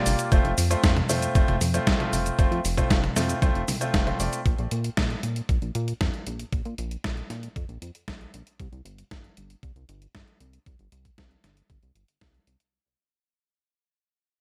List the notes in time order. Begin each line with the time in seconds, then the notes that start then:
Already playing: A#3 F4 G4 D5
0.06 G1, open hi-hat, cabasa
0.19 closed hi-hat, cabasa
0.32 F1 A3 C4 F4 C5, kick, closed hi-hat, cabasa
0.45 F1, closed hi-hat
0.58 F2, open hi-hat, cabasa
0.71 A3 C4 F4 C5, closed hi-hat, cabasa
0.84 F2, kick, snare, closed hi-hat, cabasa
0.97 closed hi-hat, high tom
1.09 F2 A3 C4 F4 C5, open hi-hat, cabasa
1.22 closed hi-hat, cabasa
1.35 F1 A3 C4 F4 C5, kick, closed hi-hat, cabasa
1.48 F1, closed hi-hat, high tom
1.61 F2, open hi-hat, cabasa
1.74 A3 C4 F4 C5, closed hi-hat, cabasa
1.87 C2, kick, snare, closed hi-hat, cabasa
2.00 A3 C4 F4 C5, closed hi-hat, high tom
2.13 F1, open hi-hat, cabasa
2.26 closed hi-hat, cabasa
2.39 F1 A3 C4 F4 C5, kick, closed hi-hat, cabasa
2.51 F2, closed hi-hat
2.64 F1, open hi-hat, cabasa
2.77 A3 C4 F4 C5, kick, closed hi-hat, high tom, cabasa
2.90 F1, kick, snare, closed hi-hat, cabasa
3.04 closed hi-hat, high tom
3.16 F2 A3 C4 F4 C5, snare, open hi-hat, cabasa
3.29 closed hi-hat, cabasa
3.42 C2 A3 C4 F4 C5, kick, closed hi-hat, cabasa
3.55 F1, closed hi-hat
3.68 C2, open hi-hat, high tom, cabasa
3.81 A3 C4 F4 C5, closed hi-hat, cabasa
3.94 F1, kick, snare, closed hi-hat, cabasa
4.07 A3 C4 F4 C5, closed hi-hat, high tom
4.20 F1 A3 C4 F4 D5, open hi-hat, cabasa
4.33 closed hi-hat, cabasa
4.46 A#1, kick, closed hi-hat
4.58 A#1, closed hi-hat
4.71 A#2, closed hi-hat
4.84 closed hi-hat
4.97 A#2, kick, snare, closed hi-hat
5.10 closed hi-hat
5.23 A#2, closed hi-hat
5.36 closed hi-hat
5.49 A#1, kick, closed hi-hat
5.62 A#1, closed hi-hat
5.75 A#2, closed hi-hat
5.88 closed hi-hat
6.01 F2, kick, snare, closed hi-hat
6.14 closed hi-hat
6.27 A#1, closed hi-hat
6.39 closed hi-hat
6.52 A#1, kick, closed hi-hat
6.65 A#2, closed hi-hat
6.78 A#1, closed hi-hat
6.91 closed hi-hat
7.04 A#1, kick, snare, closed hi-hat
7.17 closed hi-hat
7.30 A#2, snare, closed hi-hat
7.43 closed hi-hat
7.56 F2, kick, closed hi-hat
7.69 A#1, closed hi-hat
7.82 F2, closed hi-hat
7.95 closed hi-hat
8.08 A#1, kick, snare, closed hi-hat
8.21 closed hi-hat
8.34 A#1, closed hi-hat
8.47 closed hi-hat
8.59 C2, kick, closed hi-hat
8.72 C2, closed hi-hat
8.85 G1, closed hi-hat
8.98 closed hi-hat
9.11 G1, kick, snare, closed hi-hat
9.24 closed hi-hat
9.37 G1, closed hi-hat
9.50 closed hi-hat
9.63 C2, kick, closed hi-hat
9.76 C2, closed hi-hat
9.89 G1, closed hi-hat
10.02 closed hi-hat
10.15 G1, kick, snare, closed hi-hat
10.28 closed hi-hat
10.40 C2, closed hi-hat
10.53 closed hi-hat
10.66 C2, kick, closed hi-hat
10.79 G1, closed hi-hat
10.92 C2, closed hi-hat
11.05 kick, closed hi-hat
11.18 C2, kick, snare, closed hi-hat
11.31 closed hi-hat
11.44 G1, snare, closed hi-hat
11.57 closed hi-hat
11.70 G1, kick, closed hi-hat
11.83 C2, closed hi-hat
11.95 G1, closed hi-hat
12.08 closed hi-hat
12.21 C2, kick, snare, closed hi-hat
12.34 closed hi-hat
12.47 C2, closed hi-hat
12.60 closed hi-hat